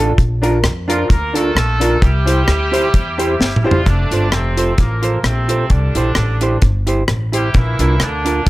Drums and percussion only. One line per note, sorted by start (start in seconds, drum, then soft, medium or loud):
0.18 kick loud
0.18 closed hi-hat medium
0.43 closed hi-hat loud
0.64 cross-stick loud
0.64 closed hi-hat medium
0.90 closed hi-hat medium
1.10 kick loud
1.10 closed hi-hat medium
1.35 closed hi-hat medium
1.57 cross-stick loud
1.57 closed hi-hat medium
1.81 closed hi-hat medium
2.02 kick loud
2.02 closed hi-hat medium
2.27 closed hi-hat medium
2.48 cross-stick loud
2.48 closed hi-hat medium
2.74 closed hi-hat medium
2.94 kick loud
2.94 closed hi-hat medium
3.19 closed hi-hat medium
3.41 snare medium
3.56 mid tom medium
3.71 floor tom loud
3.86 kick loud
3.86 closed hi-hat medium
4.11 closed hi-hat medium
4.32 cross-stick loud
4.32 closed hi-hat medium
4.58 closed hi-hat medium
4.78 kick loud
4.78 closed hi-hat medium
5.03 closed hi-hat medium
5.24 cross-stick loud
5.24 closed hi-hat medium
5.49 closed hi-hat medium
5.70 kick loud
5.70 closed hi-hat medium
5.95 closed hi-hat medium
6.15 cross-stick loud
6.15 closed hi-hat medium
6.41 closed hi-hat medium
6.62 kick loud
6.62 closed hi-hat medium
6.87 closed hi-hat medium
7.08 cross-stick loud
7.08 closed hi-hat medium
7.33 closed hi-hat medium
7.54 kick loud
7.54 closed hi-hat medium
7.79 closed hi-hat medium
8.00 cross-stick loud
8.00 closed hi-hat medium
8.26 closed hi-hat medium
8.46 kick loud
8.46 closed hi-hat medium